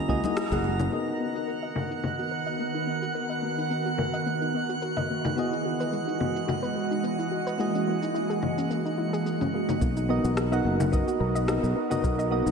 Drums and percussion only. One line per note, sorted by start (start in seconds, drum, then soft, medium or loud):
0.09 kick medium
0.24 high conga medium
0.24 shaker medium
0.37 cross-stick loud
0.37 shaker medium
0.52 kick medium
0.52 low conga medium
0.52 shaker soft
0.64 high conga medium
0.80 low conga medium
0.80 shaker medium
0.93 shaker soft
1.08 shaker soft
1.36 shaker medium
1.48 shaker soft
1.64 shaker soft
1.76 low conga medium
1.91 shaker medium
2.04 low conga medium
2.04 shaker soft
2.19 shaker soft
2.47 shaker medium
2.59 shaker soft
2.75 shaker soft
3.03 shaker medium
3.15 shaker soft
3.31 shaker soft
3.58 shaker medium
3.71 shaker soft
3.86 shaker soft
3.98 low conga medium
4.14 shaker medium
4.26 shaker soft
4.42 shaker soft
4.69 shaker medium
4.82 shaker soft
4.97 low conga soft
4.97 shaker soft
5.25 low conga medium
5.25 shaker medium
5.38 shaker soft
5.53 shaker soft
5.81 shaker medium
5.93 shaker soft
6.08 shaker soft
6.20 low conga medium
6.36 shaker medium
6.48 low conga medium
6.48 shaker medium
6.64 shaker soft
6.92 shaker medium
7.04 shaker medium
7.19 shaker soft
7.47 shaker medium
7.60 shaker soft
7.75 shaker soft
8.03 shaker medium
8.15 shaker soft
8.30 shaker soft
8.43 low conga medium
8.58 shaker medium
8.71 shaker soft
8.86 shaker soft
9.14 shaker medium
9.26 shaker medium
9.41 low conga soft
9.41 shaker soft
9.69 low conga medium
9.69 shaker medium
9.82 kick loud
9.82 shaker medium
9.97 shaker soft
10.25 shaker medium
10.37 cross-stick loud
10.37 shaker medium
10.53 shaker soft
10.80 low conga medium
10.80 shaker medium
10.93 kick loud
10.93 shaker medium
11.08 shaker soft
11.36 shaker medium
11.48 cross-stick loud
11.48 shaker medium
11.64 shaker soft
11.91 low conga medium
11.91 shaker medium
12.04 kick loud
12.04 shaker medium
12.19 shaker soft
12.47 shaker medium